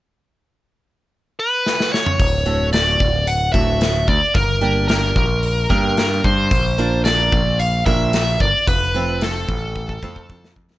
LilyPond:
<<
  \new Staff \with { instrumentName = "Lead electric guitar" } { \time 4/4 \key g \lydian \tempo 4 = 111 r2 r8 b'4 cis''8~ | cis''4 d''4 fis''8 e''4 d''8 | bes'4 bes'4. bes'4 c''8~ | c''4 d''4 f''8 e''4 d''8 |
b'4 a'2~ a'8 r8 | }
  \new Staff \with { instrumentName = "Steel-string acoustic guitar" } { \time 4/4 \key g \lydian r1 | r8 <a, d a fis'>8 <a, d a fis'>8 r4 <a, d a fis'>8 <a, d a fis'>8 r8 | r8 <g bes d' g'>8 <g bes d' g'>8 r4 <g bes d' g'>8 <g bes d' g'>8 r8 | r8 <bes d' f' bes'>8 <bes d' f' bes'>8 r4 <bes d' f' bes'>8 <bes d' f' bes'>8 r8 |
r8 <f a c' f'>8 <f a c' f'>8 r4 <f a c' f'>8 <f a c' f'>8 r8 | }
  \new Staff \with { instrumentName = "Picked electric bass" } { \clef bass \time 4/4 \key g \lydian r1 | d,,4. d,,4 d,,4 d,16 r16 | g,,4. bes,,4 g,4 g,8 | bes,,4. bes,,4 bes,,4 g,,16 r16 |
f,,4. a,,4 f,4 f,8 | }
  \new DrumStaff \with { instrumentName = "Drums" } \drummode { \time 4/4 r4 r4 r4 sn16 sn16 sn16 toml16 | <hho bd>4 <hho sn>8 bd8 hho8 bd8 <hho sn>8 bd8 | <hho bd>4 <hho sn>8 bd8 hho8 bd8 <hho sn>8 bd8 | <hho bd>4 <hho sn>8 bd8 hho8 bd8 <hho sn>8 bd8 |
<hho bd>4 <hho sn>8 bd8 bd16 bd16 bd16 bd16 bd16 sn16 bd16 sn16 | }
>>